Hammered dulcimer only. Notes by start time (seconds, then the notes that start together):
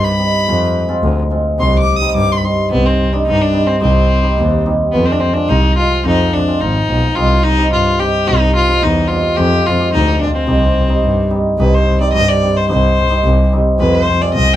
Already playing: G3
0.18 G3 C4 D#4
0.48 G#3 C4 F4
0.88 G#3 C4 F4
1.30 G#3 C4 F4
1.58 G3 C4 D#4
2.00 G3 C4 D#4
2.43 G3 C4 D#4
2.70 G3 C4 D#4
3.12 G3 C4 D#4
3.52 G3 C4 D#4
3.80 G3 C4 D#4
4.22 G3 C4 D#4
4.65 G3 C4 D#4
4.94 G#3 C4 F4
5.36 G#3 C4 F4
5.77 G#3 C4 F4
6.05 G#3 C4 F4
6.47 G#3 C4 F4
6.89 G#3 C4 F4
7.15 G3 C4 D#4
7.57 G3 C4 D#4
7.99 G3 C4 D#4
8.26 G3 C4 D#4
8.68 G3 C4 D#4
9.09 G3 C4 D#4
9.38 G#3 C4 F4
9.79 G#3 C4 G4
10.20 G#3 C4 F4
10.47 G3 C4 D#4
10.88 G3 C4 D#4
11.30 G3 C4 D#4
11.59 G3 C4 D#4
12.00 G3 C4 D#4
12.42 G3 C4 D#4
12.68 G3 C4 D#4
13.10 G3 C4 D#4
13.52 G3 C4 D#4
13.79 G#3 C4 F4
14.20 G#3 C4 F4